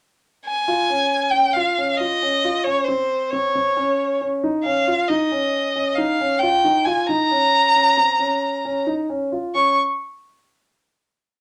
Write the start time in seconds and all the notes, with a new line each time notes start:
0.46 G#5
0.68 F4
0.90 C#4
1.31 C#4 G5
1.53 F4 F5
1.78 C#4
1.93 F5
1.97 F4 D#5
2.22 C#4
2.44 F4
2.64 C#4 C#5
2.84 C5
2.88 C4
3.30 C4 C#5
3.55 C4
3.77 C#4
4.21 C#4
4.44 D#4
4.64 C#4 F5
4.88 F4
5.08 D#4 D#5
5.32 C#4
5.76 C#4
5.95 D#4 F5
6.21 C#4
6.39 F4 G5
6.64 D#4
6.85 F4 G#5
7.07 D#4 A#5
7.31 C#4
7.75 C#4
7.97 C4
8.19 C#4
8.65 C#4
8.87 D#4
9.10 C#4
9.32 F4
9.55 C#4 C#6